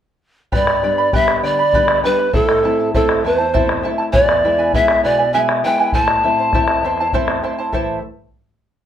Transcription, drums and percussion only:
0.52 bombo low
0.67 bombo rim
1.13 bombo low
1.28 bombo rim
1.73 bombo low
1.88 bombo rim
2.19 bombo rim
2.34 bombo low
2.49 bombo rim
2.94 bombo low
3.09 bombo rim
3.55 bombo low
3.69 bombo rim
4.00 bombo rim
4.13 bombo low
4.29 bombo rim
4.73 bombo low
4.88 bombo rim
5.49 bombo rim
5.78 bombo rim
5.92 bombo low
6.08 bombo rim
6.23 bombo rim
6.53 bombo rim, bombo low
6.68 bombo rim
6.83 bombo rim
6.97 bombo rim
7.13 bombo low
7.28 bombo rim
7.73 bombo low

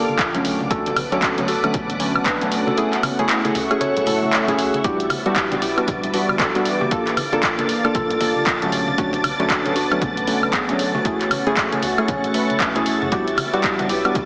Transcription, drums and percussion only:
0.08 high conga
0.19 kick, clap, closed hi-hat
0.34 closed hi-hat, low conga
0.45 open hi-hat, muted conga
0.60 high conga
0.70 kick, closed hi-hat
0.86 closed hi-hat, muted conga
0.96 open hi-hat, high conga, high woodblock
1.12 closed hi-hat
1.22 kick, clap, closed hi-hat
1.38 closed hi-hat, muted conga, high conga
1.48 open hi-hat
1.64 closed hi-hat, high woodblock
1.74 kick, closed hi-hat, muted conga, high conga
1.89 closed hi-hat, low conga
2.00 open hi-hat
2.15 high conga, high woodblock
2.25 kick, clap, closed hi-hat, muted conga
2.41 closed hi-hat, low conga
2.52 open hi-hat
2.67 muted conga, high conga
2.77 closed hi-hat
2.93 clap, closed hi-hat
3.03 open hi-hat, high conga, high woodblock
3.19 closed hi-hat, muted conga
3.29 clap, closed hi-hat
3.45 closed hi-hat, high conga
3.55 open hi-hat, muted conga
3.71 closed hi-hat, high woodblock
3.81 closed hi-hat, high conga
3.97 closed hi-hat, low conga
4.06 open hi-hat, muted conga
4.22 high conga, low conga
4.33 clap, closed hi-hat
4.47 closed hi-hat, muted conga, low conga
4.58 open hi-hat
4.74 closed hi-hat, high conga
4.84 kick, closed hi-hat
5.00 closed hi-hat
5.10 open hi-hat, muted conga, high conga, high woodblock
5.26 closed hi-hat
5.36 kick, clap, closed hi-hat
5.51 closed hi-hat, muted conga, high conga
5.62 open hi-hat
5.78 closed hi-hat, high woodblock
5.87 kick, closed hi-hat, high conga
6.03 closed hi-hat, muted conga, low conga
6.14 open hi-hat
6.29 high conga, high woodblock
6.39 kick, clap, closed hi-hat, muted conga
6.55 closed hi-hat, low conga
6.65 open hi-hat
6.81 high conga
6.91 kick, closed hi-hat, muted conga
7.07 clap, closed hi-hat
7.17 open hi-hat, high conga, high woodblock
7.32 closed hi-hat, muted conga
7.43 kick, clap, closed hi-hat
7.58 closed hi-hat, high conga
7.69 open hi-hat
7.84 closed hi-hat, muted conga, high woodblock
7.95 kick, closed hi-hat, high conga
8.10 closed hi-hat, low conga
8.21 open hi-hat, muted conga
8.36 high conga
8.46 kick, clap, closed hi-hat
8.62 closed hi-hat, low conga
8.72 open hi-hat, muted conga
8.88 high conga
8.98 kick, closed hi-hat
9.13 closed hi-hat, muted conga
9.24 open hi-hat, high conga, high woodblock
9.40 closed hi-hat
9.50 kick, clap, closed hi-hat
9.65 closed hi-hat, muted conga, high conga
9.76 open hi-hat
9.91 closed hi-hat, high woodblock
10.02 kick, closed hi-hat, muted conga, high conga
10.17 closed hi-hat, low conga
10.27 open hi-hat
10.43 high conga, high woodblock
10.53 kick, clap, closed hi-hat
10.68 closed hi-hat, low conga
10.79 open hi-hat
10.95 muted conga, high conga
11.05 kick, closed hi-hat
11.21 clap, closed hi-hat
11.31 open hi-hat, high conga, high woodblock
11.46 closed hi-hat, muted conga
11.57 kick, clap, closed hi-hat
11.72 closed hi-hat, high conga
11.82 open hi-hat, muted conga
11.98 closed hi-hat, high woodblock
12.08 kick, closed hi-hat, high conga
12.24 closed hi-hat, low conga
12.34 open hi-hat, muted conga
12.50 closed hi-hat, high conga
12.60 kick, clap, closed hi-hat
12.75 closed hi-hat, muted conga, low conga
12.86 open hi-hat
13.02 high conga
13.12 kick, closed hi-hat
13.28 closed hi-hat
13.37 open hi-hat, muted conga, high conga, high woodblock
13.53 closed hi-hat
13.64 kick, clap, closed hi-hat
13.79 closed hi-hat, muted conga, high conga
13.89 open hi-hat
14.05 closed hi-hat, high woodblock
14.15 kick, closed hi-hat, high conga

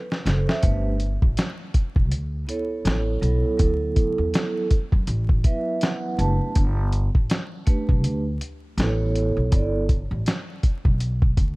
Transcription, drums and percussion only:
0.12 snare
0.26 snare, closed hi-hat
0.49 snare
0.63 kick, closed hi-hat
1.00 closed hi-hat
1.22 kick
1.37 snare, closed hi-hat
1.74 kick, closed hi-hat
1.96 kick
2.12 closed hi-hat
2.49 closed hi-hat
2.85 snare, closed hi-hat
3.23 closed hi-hat
3.59 kick, closed hi-hat
3.96 kick, closed hi-hat
4.34 snare, closed hi-hat
4.71 kick, closed hi-hat
4.92 kick
5.07 closed hi-hat
5.29 kick
5.44 kick, closed hi-hat
5.81 snare, closed hi-hat
6.19 closed hi-hat
6.55 kick, closed hi-hat
6.93 closed hi-hat
7.15 kick
7.30 snare, closed hi-hat
7.67 kick, closed hi-hat
7.89 kick
8.04 closed hi-hat
8.41 closed hi-hat
8.78 snare, closed hi-hat
9.15 closed hi-hat
9.52 kick, closed hi-hat
9.89 kick, closed hi-hat
10.26 snare, closed hi-hat
10.63 kick, closed hi-hat
10.85 kick
11.00 closed hi-hat
11.22 kick
11.37 kick, closed hi-hat

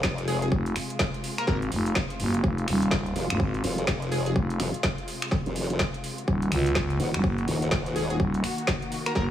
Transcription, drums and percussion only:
0.03 kick, snare
0.18 closed hi-hat
0.28 open hi-hat
0.42 closed hi-hat
0.52 kick
0.66 closed hi-hat
0.76 finger snap, open hi-hat
0.90 closed hi-hat
0.99 kick, snare
1.14 closed hi-hat
1.24 open hi-hat
1.38 finger snap, closed hi-hat
1.47 kick, snare
1.62 closed hi-hat
1.72 open hi-hat
1.86 closed hi-hat
1.95 kick, snare
2.10 closed hi-hat
2.20 open hi-hat
2.34 closed hi-hat
2.44 kick
2.58 closed hi-hat
2.68 finger snap, open hi-hat
2.82 closed hi-hat
2.91 kick, snare
3.06 closed hi-hat
3.16 open hi-hat
3.30 finger snap, closed hi-hat
3.40 kick
3.54 closed hi-hat
3.64 open hi-hat
3.78 closed hi-hat
3.87 kick, snare
4.02 closed hi-hat
4.12 open hi-hat
4.26 closed hi-hat
4.36 kick
4.50 closed hi-hat
4.60 finger snap, open hi-hat
4.74 closed hi-hat
4.83 kick, snare
4.98 closed hi-hat
5.08 open hi-hat
5.22 finger snap, closed hi-hat
5.31 kick, snare
5.46 closed hi-hat
5.56 open hi-hat
5.70 closed hi-hat
5.79 kick, snare
5.94 closed hi-hat
6.04 open hi-hat
6.18 closed hi-hat
6.28 kick
6.42 closed hi-hat
6.52 finger snap, open hi-hat
6.66 closed hi-hat
6.75 kick, snare
6.90 closed hi-hat
7.00 open hi-hat
7.14 finger snap, closed hi-hat
7.24 kick
7.38 closed hi-hat
7.48 open hi-hat
7.62 closed hi-hat
7.71 kick, snare
7.86 closed hi-hat
7.96 open hi-hat
8.10 closed hi-hat
8.20 kick
8.34 closed hi-hat
8.44 finger snap, open hi-hat
8.58 closed hi-hat
8.67 kick, snare
8.82 closed hi-hat
8.92 open hi-hat
9.06 finger snap, closed hi-hat
9.15 kick, snare

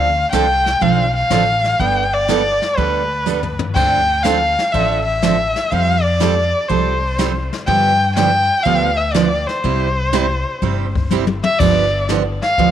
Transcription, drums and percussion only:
0.33 snare, hi-hat pedal
0.66 snare
0.82 brush sweep, kick
1.31 snare, hi-hat pedal
1.64 snare
1.80 brush sweep, kick
2.29 snare, hi-hat pedal
2.62 snare
2.78 brush sweep, kick
3.27 hi-hat pedal
3.43 floor tom
3.59 floor tom
3.76 brush sweep, kick, crash
4.25 snare, hi-hat pedal
4.59 snare
4.74 brush sweep, kick
5.23 snare, hi-hat pedal
5.56 snare
5.72 brush sweep, kick
6.21 snare, hi-hat pedal
6.70 brush sweep, kick
7.19 snare, hi-hat pedal
7.53 snare
7.67 brush sweep, kick
8.17 snare, hi-hat pedal
8.66 brush sweep, kick
9.15 snare, hi-hat pedal
9.49 snare
9.64 brush sweep, kick
10.13 snare, hi-hat pedal
10.62 brush sweep, kick
10.95 kick
11.11 hi-hat pedal, high tom
11.27 high tom
11.44 high tom
11.60 brush sweep, kick, crash
12.09 snare, hi-hat pedal
12.42 snare
12.58 brush sweep, kick

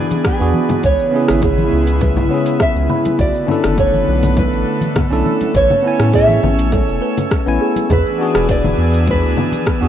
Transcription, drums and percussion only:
0.11 closed hi-hat, low conga, shaker
0.25 kick, cross-stick, closed hi-hat, shaker
0.40 shaker
0.54 low conga
0.69 closed hi-hat, high conga, low conga, shaker
0.83 kick, closed hi-hat, shaker
0.99 shaker
1.28 cross-stick, closed hi-hat, shaker
1.42 kick, closed hi-hat, low conga, shaker
1.58 low conga, shaker
1.87 closed hi-hat, shaker
2.01 kick, closed hi-hat, high conga, shaker
2.17 low conga, shaker
2.46 closed hi-hat, shaker
2.60 kick, cross-stick, closed hi-hat, shaker
2.76 shaker
2.90 low conga
3.05 closed hi-hat, high conga, shaker
3.19 kick, closed hi-hat, shaker
3.35 shaker
3.48 low conga
3.64 cross-stick, closed hi-hat, shaker
3.78 kick, closed hi-hat, shaker
3.94 low conga, shaker
4.23 closed hi-hat, low conga, shaker
4.37 kick, closed hi-hat, high conga, shaker
4.53 shaker
4.81 closed hi-hat, low conga, shaker
4.96 kick, cross-stick, closed hi-hat, low conga, shaker
5.12 shaker
5.26 low conga
5.41 closed hi-hat, high conga, shaker
5.55 kick, closed hi-hat, shaker
5.70 low conga, shaker
6.00 cross-stick, closed hi-hat, shaker
6.13 kick, closed hi-hat, shaker
6.29 low conga, shaker
6.43 low conga
6.59 closed hi-hat, shaker
6.72 kick, closed hi-hat, high conga, shaker
6.88 shaker
7.18 closed hi-hat, low conga, shaker
7.31 kick, cross-stick, closed hi-hat, shaker
7.47 shaker
7.76 closed hi-hat, high conga, shaker
7.90 kick, closed hi-hat, low conga, shaker
8.06 shaker
8.35 cross-stick, closed hi-hat, shaker
8.49 kick, closed hi-hat, shaker
8.64 low conga, shaker
8.94 closed hi-hat, shaker
9.07 kick, closed hi-hat, high conga, shaker
9.24 shaker
9.37 low conga
9.52 closed hi-hat, low conga, shaker
9.66 kick, cross-stick, closed hi-hat, shaker
9.82 shaker

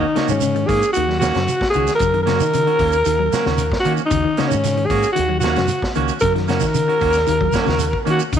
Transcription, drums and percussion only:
0.16 snare, closed hi-hat, shekere
0.29 shekere
0.41 closed hi-hat, shekere
0.56 closed hi-hat
0.69 kick, open hi-hat, shekere
0.83 closed hi-hat, shekere
0.94 closed hi-hat, shekere
1.10 snare
1.21 snare, closed hi-hat, shekere
1.34 snare, closed hi-hat, shekere
1.48 closed hi-hat, shekere
1.61 kick, snare
1.73 closed hi-hat, shekere
1.87 snare, closed hi-hat, shekere
1.99 kick, closed hi-hat, shekere
2.14 closed hi-hat
2.27 snare, closed hi-hat, shekere
2.40 snare, shekere
2.53 closed hi-hat, shekere
2.67 closed hi-hat
2.79 kick, open hi-hat, shekere
2.92 closed hi-hat, shekere
3.05 closed hi-hat, shekere
3.32 snare, closed hi-hat, shekere
3.46 snare, shekere
3.58 closed hi-hat, shekere
3.72 kick, snare
3.85 closed hi-hat, shekere
3.97 shekere
4.11 kick, closed hi-hat, shekere
4.37 snare, closed hi-hat, shekere
4.51 shekere
4.63 snare, closed hi-hat, shekere
4.77 closed hi-hat
4.90 kick, open hi-hat, shekere
5.03 closed hi-hat, shekere
5.16 closed hi-hat, shekere
5.41 snare, closed hi-hat, shekere
5.56 snare, closed hi-hat, shekere
5.68 closed hi-hat, shekere
5.82 kick, snare
5.95 closed hi-hat, shekere
6.08 closed hi-hat, shekere
6.20 kick, closed hi-hat, shekere
6.36 snare, closed hi-hat
6.48 snare, closed hi-hat, shekere
6.60 kick, snare, shekere
6.75 closed hi-hat, shekere
6.89 closed hi-hat
7.01 kick, open hi-hat, shekere
7.13 closed hi-hat, shekere
7.17 snare
7.27 closed hi-hat, shekere
7.41 kick
7.52 kick, snare, closed hi-hat, shekere
7.67 snare, shekere
7.79 closed hi-hat, shekere
7.93 kick
8.06 closed hi-hat, shekere
8.19 shekere
8.33 kick, closed hi-hat, shekere

